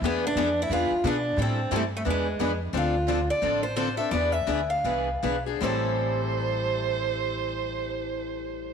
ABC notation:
X:1
M:4/4
L:1/16
Q:"Swing" 1/4=169
K:Am
V:1 name="Violin"
z16 | z16 | z16 | z16 |
c16- | c16 |]
V:2 name="Steel-string acoustic guitar"
B,2 D4 E2 F4 D4 | C4 A,2 A,2 ^G,6 z2 | F6 d4 c2 c2 e2 | d2 e4 f8 z2 |
c16- | c16 |]
V:3 name="Steel-string acoustic guitar"
[E,B,D^GB]2 z2 [E,B,DGB] z3 [E,B,DGB]2 z2 [E,B,DGB] z3 | [E,G,CEA]2 z2 [E,G,CEA] z3 [E,B,D^GB]2 z2 [E,B,DGB] z3 | [D,F,CDA]2 z2 [D,F,CDA] z3 [D,F,CDA]2 z2 [D,F,CDA] z3 | [E,B,D^GB]2 z2 [E,B,DGB] z3 [E,B,DGB]2 z2 [E,B,DGB] z3 |
[A,,E,G,CEA]16- | [A,,E,G,CEA]16 |]
V:4 name="Steel-string acoustic guitar"
[E,B,D^G]2 z2 [E,B,DG] z3 [E,B,DG]2 z2 [E,B,DG] z3 | [E,G,CEA]2 z2 [E,G,CEA] z3 [E,B,D^G]2 z2 [E,B,DG] z3 | [D,F,CDA]2 z2 [D,F,CDA] z3 [D,F,CDA]2 z2 [D,F,CDA] z [CDA]2 | [E,B,D^G]2 z2 [E,B,DG] z3 [E,B,DG]2 z2 [E,B,DG] z [B,DG]2 |
[A,,E,G,CEA]16- | [A,,E,G,CEA]16 |]
V:5 name="Upright bass" clef=bass
E,,4 F,,4 E,,2 z2 B,,4 | A,,4 G,,4 E,,4 F,,4 | D,,8 A,,,8 | E,,4 D,,4 C,,4 B,,,4 |
A,,,16- | A,,,16 |]